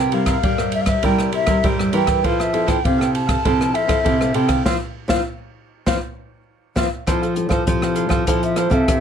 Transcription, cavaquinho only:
0.00 0.11 E4 medium
0.00 0.12 A#4 medium
0.00 0.12 C5 medium
0.00 0.13 E5 medium
0.12 0.25 E4 soft
0.12 0.26 A#4 soft
0.12 0.26 C5 medium
0.12 0.26 E5 medium
0.26 0.36 E4 medium
0.26 0.37 A#4 medium
0.26 0.36 C5 medium
0.26 0.37 E5 medium
0.59 0.87 A#4 soft
0.59 0.87 C5 soft
0.59 0.86 E5 soft
0.87 1.02 A#4 soft
0.87 1.02 C5 soft
0.87 1.02 E5 soft
1.03 1.31 E4 medium
1.03 1.32 A#4 medium
1.03 1.33 C5 medium
1.03 1.33 E5 medium
1.32 1.46 E4 soft
1.32 1.45 A#4 soft
1.32 1.46 C5 soft
1.32 1.46 E5 medium
1.47 1.57 E4 medium
1.47 1.57 A#4 medium
1.47 1.57 C5 medium
1.47 1.57 E5 medium
1.63 1.77 E4 medium
1.63 1.78 A#4 medium
1.63 1.78 C5 medium
1.63 1.78 E5 medium
1.79 1.91 A#4 soft
1.79 1.92 C5 soft
1.79 1.93 E5 soft
1.93 2.07 E4 medium
1.93 2.07 A#4 medium
1.93 2.06 C5 medium
1.93 2.05 E5 medium
2.07 2.22 A#4 soft
2.07 2.22 C5 soft
2.07 2.22 E5 soft
2.24 2.52 E4 medium
2.24 2.52 A4 medium
2.24 2.52 C5 medium
2.24 2.53 F5 medium
2.53 2.65 E4 soft
2.53 2.66 A4 soft
2.53 2.66 C5 medium
2.53 2.66 F5 medium
2.66 2.77 E4 medium
2.66 2.77 A4 medium
2.66 2.77 C5 medium
2.66 2.77 F5 medium
2.98 3.27 A4 soft
2.98 3.27 C5 soft
2.98 3.25 F5 soft
3.27 3.43 A4 soft
3.27 3.43 C5 soft
3.27 3.42 F5 soft
3.44 3.72 E4 medium
3.44 3.72 A4 medium
3.44 3.72 C5 medium
3.44 3.73 F5 medium
3.73 3.86 E4 soft
3.73 3.87 A4 soft
3.73 3.87 C5 medium
3.73 3.87 F5 medium
3.87 3.98 E4 medium
3.87 3.98 A4 medium
3.87 3.98 C5 medium
3.87 3.98 F5 medium
4.03 4.18 E4 medium
4.03 4.19 A4 medium
4.03 4.19 C5 medium
4.03 4.19 F5 medium
4.20 4.33 A4 soft
4.20 4.34 C5 soft
4.20 4.34 F5 soft
4.34 4.49 E4 medium
4.34 4.49 A4 medium
4.34 4.48 C5 medium
4.34 4.47 F5 medium
4.48 4.64 A4 soft
4.48 4.64 C5 soft
4.48 4.63 F5 soft
4.65 4.75 C5 loud
4.65 4.75 E5 medium
4.65 4.75 F5 medium
5.09 5.19 C5 medium
5.09 5.20 E5 medium
5.09 5.20 F5 medium
5.86 5.96 C5 medium
5.86 5.96 E5 medium
5.86 5.96 F5 medium
6.77 6.86 C5 medium
6.77 6.86 E5 medium
6.77 6.86 F5 medium
7.07 7.20 E4 medium
7.07 7.21 A4 medium
7.07 7.21 C5 medium
7.07 7.21 F5 medium
7.22 7.34 A4 soft
7.22 7.34 C5 soft
7.22 7.35 F5 soft
7.35 muted cavaquinho stroke soft
7.50 7.80 A4 medium
7.50 7.80 C5 medium
7.50 7.80 F5 medium
7.82 7.94 A4 soft
7.82 7.94 C5 soft
7.82 7.95 F5 soft
7.95 8.10 E4 medium
7.95 8.10 A4 medium
7.95 8.10 C5 medium
7.95 8.09 F5 medium
8.10 8.26 A4 medium
8.10 8.25 C5 medium
8.10 8.25 F5 medium
8.27 8.41 E4 medium
8.27 8.41 A4 medium
8.27 8.42 C5 medium
8.27 8.42 F5 medium
8.43 muted cavaquinho stroke soft
8.56 8.71 E4 soft
8.56 8.71 A4 soft
8.56 8.70 C5 medium
8.56 8.70 F5 soft
8.71 9.00 A4 medium
8.71 9.00 C5 medium
8.71 9.00 F5 medium

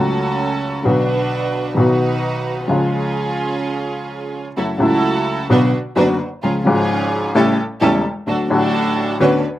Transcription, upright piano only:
0.00 0.81 C#2 medium
0.00 0.81 C#3 medium
0.00 0.81 F#3 medium
0.00 0.82 A3 soft
0.00 0.82 F#4 medium
0.83 1.73 B1 medium
0.83 1.73 B2 medium
0.83 1.72 D3 medium
0.83 1.73 F#3 medium
0.83 1.74 B3 medium
0.88 1.75 F#4 medium
1.75 2.65 B1 medium
1.75 2.65 B2 medium
1.75 2.64 D#3 medium
1.75 2.65 F#3 soft
1.75 2.66 B3 medium
1.79 2.66 F#4 medium
2.67 4.47 C#2 medium
2.67 4.47 C#3 medium
2.67 4.47 F3 soft
2.67 4.47 G#3 medium
2.67 4.48 F4 medium
4.57 4.77 F#2 soft
4.57 4.76 C#3 soft
4.57 4.77 F#3 soft
4.57 4.77 A3 soft
4.57 4.77 E4 soft
4.78 5.47 C#2 medium
4.78 5.47 C#3 medium
4.78 5.46 F#3 medium
4.78 5.47 A3 medium
4.78 5.48 E4 medium
5.50 5.70 B1 medium
5.50 5.70 B2 medium
5.50 5.70 D3 medium
5.50 5.70 F#3 medium
5.50 5.70 B3 medium
5.50 5.70 F#4 medium
5.96 6.16 F#1 medium
5.96 6.16 F#2 medium
5.96 6.16 D3 medium
5.96 6.16 F#3 medium
5.96 6.16 B3 medium
5.96 6.16 F#4 medium
6.43 6.63 C#2 medium
6.43 6.63 C#3 soft
6.43 6.63 F3 soft
6.43 6.63 G#3 soft
6.43 6.63 F4 soft
6.64 7.32 G#1 medium
6.64 7.32 G#2 medium
6.64 7.31 C#3 medium
6.64 7.32 F3 medium
6.64 7.33 G#3 medium
6.69 7.33 F4 medium
7.35 7.55 A1 medium
7.35 7.55 A2 medium
7.35 7.55 C#3 medium
7.35 7.55 G3 medium
7.35 7.55 A3 medium
7.35 7.55 E4 medium
7.81 8.01 E1 medium
7.81 8.01 E2 medium
7.81 8.01 C#3 medium
7.81 8.01 G3 medium
7.81 8.01 A3 medium
7.81 8.01 E4 medium
8.27 8.47 D2 soft
8.27 8.47 D3 medium
8.27 8.47 F#3 soft
8.27 8.47 A3 soft
8.27 8.47 F#4 soft
8.48 9.17 A1 medium
8.48 9.17 A2 medium
8.48 9.16 D3 medium
8.48 9.17 F#3 medium
8.48 9.17 A3 medium
8.53 9.18 F#4 medium
9.20 9.40 D2 medium
9.20 9.40 D3 medium
9.20 9.40 B3 medium
9.20 9.40 C#4 medium
9.20 9.40 F#4 medium

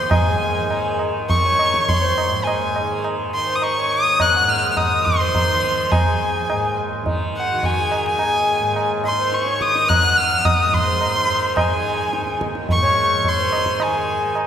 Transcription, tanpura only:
0.00 1.73 D#2 medium
0.00 0.10 G#2 medium
0.00 0.65 D#3 medium
0.11 2.27 G#2 medium
0.65 1.18 D#3 medium
1.18 2.81 D#3 medium
1.73 3.87 D#2 medium
2.28 4.39 G#2 medium
2.81 3.33 D#3 medium
3.33 4.92 D#3 medium
3.87 5.99 D#2 medium
4.39 6.50 G#2 medium
4.92 5.44 D#3 medium
5.44 7.03 D#3 medium
5.99 8.05 D#2 medium
6.50 8.59 G#2 medium
7.03 7.54 D#3 medium
7.54 9.11 D#3 medium
8.06 10.15 D#2 medium
8.60 10.65 G#2 medium
9.11 9.63 D#3 medium
9.63 11.16 D#3 medium
10.15 12.21 D#2 medium
10.65 12.74 G#2 medium
11.16 11.70 D#3 medium
11.70 13.24 D#3 medium
12.22 14.25 D#2 medium
12.74 14.47 G#2 medium
13.24 13.77 D#3 medium
13.77 14.47 D#3 medium
14.25 14.47 D#2 medium

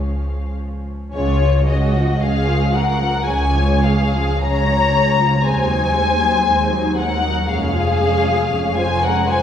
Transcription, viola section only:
0.00 0.88 F3 medium
0.00 0.92 C#4 medium
1.12 1.38 G#3 medium
1.12 1.38 C#4 medium
1.41 1.68 F3 medium
1.41 1.68 F4 medium
1.66 1.93 G#3 medium
1.66 1.94 C#4 medium
1.95 2.21 F3 medium
1.95 2.21 F4 medium
2.21 2.45 G#3 medium
2.21 2.45 C#4 medium
2.47 2.73 F3 medium
2.47 2.73 F4 medium
2.72 2.99 G#3 medium
2.72 2.99 C#4 medium
3.00 3.27 F3 medium
3.00 3.27 F4 medium
3.26 3.53 G#3 medium
3.26 3.52 C#4 medium
3.55 3.84 F3 medium
3.55 3.84 F4 medium
3.83 4.13 G#3 medium
3.83 4.13 C#4 medium
4.13 4.41 F3 medium
4.13 4.41 F4 medium
4.41 4.66 G#3 medium
4.41 4.66 C#4 medium
4.68 4.93 F3 medium
4.68 4.93 F4 medium
4.92 5.18 G#3 medium
4.92 5.18 C#4 medium
5.18 5.43 F3 medium
5.18 5.44 F4 medium
5.44 5.67 G#3 medium
5.44 5.67 C4 medium
5.69 5.94 F#3 medium
5.69 5.94 D#4 medium
5.93 6.19 G#3 medium
5.93 6.20 C4 medium
6.20 6.45 F#3 medium
6.20 6.45 D#4 medium
6.44 6.68 G#3 medium
6.44 6.69 C4 medium
6.70 6.96 F#3 medium
6.70 6.96 D#4 medium
6.95 7.22 G#3 medium
6.95 7.22 C4 medium
7.21 7.47 F#3 medium
7.21 7.47 D#4 medium
7.47 7.71 G#3 medium
7.47 7.71 C#4 medium
7.73 8.00 F3 medium
7.73 7.99 F4 medium
7.99 8.25 G#3 medium
7.99 8.26 C#4 medium
8.25 8.51 F3 medium
8.25 8.51 F4 medium
8.53 8.76 G#3 medium
8.53 8.76 C#4 medium
8.77 9.03 F3 medium
8.77 9.03 F4 medium
9.03 9.29 G#3 medium
9.03 9.29 C#4 medium
9.29 9.43 F3 medium
9.29 9.43 F4 medium

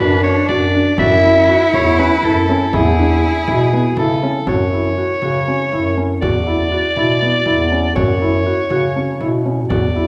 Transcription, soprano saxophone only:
0.00 0.23 B4 medium
0.23 0.47 C#5 medium
0.49 0.95 D5 medium
0.99 1.70 E5 loud
1.74 2.00 C#5 medium
1.99 2.26 B4 medium
2.25 2.76 A4 medium
2.74 3.98 G#4 medium
3.99 4.45 A4 medium
4.49 6.04 C#5 medium
6.21 7.92 D5 medium
7.96 9.39 C#5 medium
9.70 10.07 D5 loud

